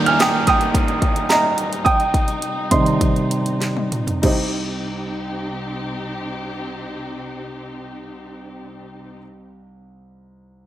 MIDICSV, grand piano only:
0, 0, Header, 1, 2, 480
1, 0, Start_track
1, 0, Key_signature, -3, "minor"
1, 0, Tempo, 549451
1, 1621, Time_signature, 4, 2, 24, 8
1, 1621, Tempo, 586510
1, 3061, Tempo, 631579
1, 8420, End_track
2, 0, Start_track
2, 0, Title_t, "Grand piano"
2, 0, Program_c, 0, 0
2, 0, Control_c, 0, 64, 127
2, 0, Note_on_c, 0, 51, 48
2, 0, Note_on_c, 0, 55, 45
2, 0, Note_on_c, 0, 58, 52
2, 0, Note_on_c, 0, 82, 73
2, 0, Note_on_c, 0, 91, 85
2, 56, Note_on_c, 0, 89, 85
2, 70, Note_on_c, 0, 80, 54
2, 175, Note_off_c, 0, 80, 0
2, 175, Note_on_c, 0, 87, 74
2, 179, Note_off_c, 0, 89, 0
2, 187, Note_on_c, 0, 79, 59
2, 396, Note_off_c, 0, 87, 0
2, 403, Note_off_c, 0, 79, 0
2, 415, Note_on_c, 0, 87, 86
2, 429, Note_on_c, 0, 79, 64
2, 1105, Note_off_c, 0, 79, 0
2, 1130, Note_off_c, 0, 82, 0
2, 1130, Note_on_c, 0, 82, 79
2, 1144, Note_on_c, 0, 75, 52
2, 1154, Note_off_c, 0, 87, 0
2, 1586, Note_off_c, 0, 82, 0
2, 1593, Note_off_c, 0, 75, 0
2, 1613, Note_on_c, 0, 87, 78
2, 1624, Note_on_c, 0, 79, 66
2, 1633, Control_c, 0, 64, 0
2, 1634, Note_off_c, 0, 51, 0
2, 1636, Note_off_c, 0, 55, 0
2, 1639, Note_off_c, 0, 91, 0
2, 1640, Note_off_c, 0, 58, 0
2, 1764, Control_c, 0, 64, 127
2, 2296, Note_off_c, 0, 79, 0
2, 2320, Note_on_c, 0, 48, 43
2, 2320, Note_on_c, 0, 84, 68
2, 2326, Note_on_c, 0, 51, 37
2, 2330, Note_on_c, 0, 55, 45
2, 2332, Note_on_c, 0, 75, 47
2, 2345, Note_off_c, 0, 87, 0
2, 2645, Note_off_c, 0, 48, 0
2, 2648, Note_off_c, 0, 51, 0
2, 2651, Note_off_c, 0, 55, 0
2, 3262, Note_off_c, 0, 84, 0
2, 3267, Note_off_c, 0, 75, 0
2, 3521, Note_on_c, 0, 63, 59
2, 3531, Note_on_c, 0, 67, 56
2, 3537, Note_on_c, 0, 36, 54
2, 3542, Control_c, 0, 64, 0
2, 3543, Note_on_c, 0, 72, 51
2, 3551, Note_on_c, 0, 75, 65
2, 3686, Control_c, 0, 64, 127
2, 7285, Note_off_c, 0, 63, 0
2, 7294, Note_off_c, 0, 67, 0
2, 7300, Note_off_c, 0, 36, 0
2, 7307, Note_off_c, 0, 72, 0
2, 7314, Note_off_c, 0, 75, 0
2, 8420, End_track
0, 0, End_of_file